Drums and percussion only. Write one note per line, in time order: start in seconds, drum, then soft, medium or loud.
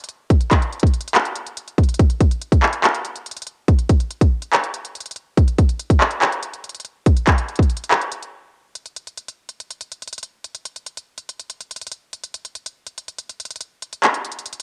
0.04 closed hi-hat medium
0.09 closed hi-hat medium
0.30 kick loud
0.30 closed hi-hat medium
0.41 closed hi-hat medium
0.51 kick loud
0.51 clap medium
0.51 closed hi-hat medium
0.62 closed hi-hat medium
0.72 closed hi-hat soft
0.80 kick loud
0.80 closed hi-hat soft
0.87 closed hi-hat medium
0.94 closed hi-hat medium
0.94 open hi-hat medium
1.01 closed hi-hat medium
1.08 closed hi-hat medium
1.15 clap loud
1.15 closed hi-hat medium
1.25 closed hi-hat medium
1.36 closed hi-hat medium
1.47 closed hi-hat medium
1.57 closed hi-hat medium
1.68 closed hi-hat soft
1.78 kick loud
1.78 closed hi-hat soft
1.83 closed hi-hat medium
1.89 closed hi-hat medium
1.94 closed hi-hat medium
1.99 kick loud
1.99 closed hi-hat medium
2.10 closed hi-hat medium
2.20 kick loud
2.20 closed hi-hat medium
2.31 closed hi-hat medium
2.42 closed hi-hat medium
2.52 kick loud
2.52 closed hi-hat medium
2.63 clap medium
2.73 closed hi-hat medium
2.84 clap loud
2.84 closed hi-hat medium
2.95 closed hi-hat medium
3.05 closed hi-hat medium
3.16 closed hi-hat medium
3.26 closed hi-hat medium
3.31 closed hi-hat medium
3.37 closed hi-hat medium
3.42 closed hi-hat medium
3.47 closed hi-hat medium
3.68 kick loud
3.68 closed hi-hat medium
3.79 closed hi-hat medium
3.89 kick loud
3.89 closed hi-hat medium
4.00 closed hi-hat medium
4.11 closed hi-hat medium
4.21 kick loud
4.21 closed hi-hat medium
4.42 closed hi-hat medium
4.53 clap loud
4.53 closed hi-hat medium
4.64 closed hi-hat medium
4.74 closed hi-hat medium
4.85 closed hi-hat medium
4.95 closed hi-hat medium
5.00 closed hi-hat medium
5.06 closed hi-hat medium
5.11 closed hi-hat medium
5.16 closed hi-hat medium
5.37 kick loud
5.37 closed hi-hat medium
5.48 closed hi-hat medium
5.58 kick loud
5.58 closed hi-hat medium
5.69 closed hi-hat medium
5.79 closed hi-hat medium
5.90 kick loud
5.90 closed hi-hat medium
6.01 clap loud
6.11 closed hi-hat medium
6.22 clap loud
6.22 closed hi-hat medium
6.32 closed hi-hat medium
6.43 closed hi-hat medium
6.54 closed hi-hat medium
6.64 closed hi-hat medium
6.69 closed hi-hat medium
6.75 closed hi-hat medium
6.80 closed hi-hat medium
6.85 closed hi-hat medium
7.06 kick loud
7.06 closed hi-hat medium
7.17 closed hi-hat medium
7.27 kick loud
7.27 clap medium
7.27 closed hi-hat medium
7.38 closed hi-hat medium
7.49 closed hi-hat soft
7.56 kick loud
7.56 closed hi-hat soft
7.63 closed hi-hat medium
7.70 closed hi-hat medium
7.70 open hi-hat medium
7.77 closed hi-hat medium
7.84 closed hi-hat medium
7.91 clap loud
7.91 closed hi-hat medium
8.01 closed hi-hat medium
8.12 closed hi-hat medium
8.23 closed hi-hat medium
8.75 closed hi-hat medium
8.86 closed hi-hat medium
8.96 closed hi-hat medium
9.07 closed hi-hat medium
9.17 closed hi-hat medium
9.28 closed hi-hat medium
9.49 closed hi-hat medium
9.60 closed hi-hat medium
9.70 closed hi-hat medium
9.81 closed hi-hat medium
9.92 closed hi-hat medium
10.02 closed hi-hat medium
10.07 closed hi-hat medium
10.13 closed hi-hat medium
10.18 closed hi-hat medium
10.23 closed hi-hat medium
10.44 closed hi-hat medium
10.55 closed hi-hat medium
10.65 closed hi-hat medium
10.76 closed hi-hat medium
10.86 closed hi-hat medium
10.97 closed hi-hat medium
11.18 closed hi-hat medium
11.29 closed hi-hat medium
11.40 closed hi-hat medium
11.50 closed hi-hat medium
11.61 closed hi-hat medium
11.71 closed hi-hat medium
11.76 closed hi-hat medium
11.82 closed hi-hat medium
11.87 closed hi-hat medium
11.92 closed hi-hat medium
12.13 closed hi-hat medium
12.24 closed hi-hat medium
12.34 closed hi-hat medium
12.45 closed hi-hat medium
12.55 closed hi-hat medium
12.66 closed hi-hat medium
12.87 closed hi-hat medium
12.98 closed hi-hat medium
13.08 closed hi-hat medium
13.19 closed hi-hat medium
13.30 closed hi-hat medium
13.40 closed hi-hat medium
13.45 closed hi-hat medium
13.51 closed hi-hat medium
13.56 closed hi-hat medium
13.61 closed hi-hat medium
13.82 closed hi-hat medium
13.93 closed hi-hat medium
14.03 clap medium
14.03 closed hi-hat medium
14.14 closed hi-hat medium
14.25 closed hi-hat soft
14.32 closed hi-hat soft
14.39 closed hi-hat medium
14.46 closed hi-hat medium
14.53 closed hi-hat medium